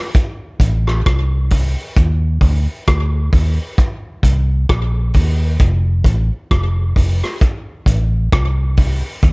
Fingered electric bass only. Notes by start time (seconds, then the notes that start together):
0.60 A1
1.07 C2
1.97 D#2
2.42 D2
2.88 D2
3.33 D#2
4.24 C2
4.70 A#1
5.15 D#2
5.61 F1
6.05 A1
6.52 F1
6.97 F1
7.87 A1
8.33 C2
9.24 D#2